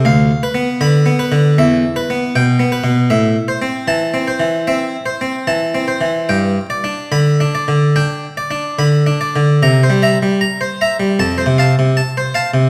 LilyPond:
<<
  \new Staff \with { instrumentName = "Harpsichord" } { \time 4/4 \key c \major \tempo 4 = 76 f''8 b'8 b''8 b'8 e''8 b'8 g''8 b'8 | e''8 c''8 a''8 c''8 e''8 c''8 a''8 c''8 | g''8 d''8 b''8 d''8 g''8 d''8 b''8 d''8 | bes''16 c''16 <e'' bes''>16 g16 bes''16 c''16 <e'' bes''>16 g16 a''16 c''16 <f'' a''>16 c16 a''16 c''16 <f'' a''>16 c16 | }
  \new Staff \with { instrumentName = "Harpsichord" } { \clef bass \time 4/4 \key c \major \tuplet 3/2 { d,8 r8 b8 d8 b8 d8 e,8 r8 b8 b,8 b8 b,8 } | \tuplet 3/2 { a,8 r8 c'8 e8 c'8 e8 c'8 r8 c'8 e8 c'8 e8 } | \tuplet 3/2 { g,8 r8 d'8 d8 d'8 d8 d'8 r8 d'8 d8 d'8 d8 } | \tuplet 3/2 { c8 g8 r8 } r4 \tuplet 3/2 { f,8 c8 r8 } r4 | }
>>